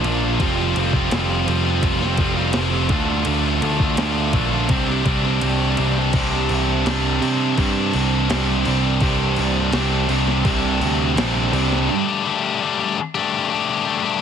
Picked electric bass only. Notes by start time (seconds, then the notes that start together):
0.04 A#1
0.39 F1
0.75 F1
1.12 F1
1.47 F1
1.83 F1
2.18 F1
2.54 F1
2.89 D2
3.26 D2
3.62 D2
3.98 D2
4.33 A#1
4.69 C2
5.05 C2
5.42 C2
5.78 C2
6.13 C2
6.50 C2
6.85 C2
7.21 C3
7.58 G2
7.94 C2
8.30 C2
8.67 C2
9.02 C2
9.38 C2
9.73 C2
10.08 C2
10.45 C2
10.80 D2
11.16 A#1
11.52 C2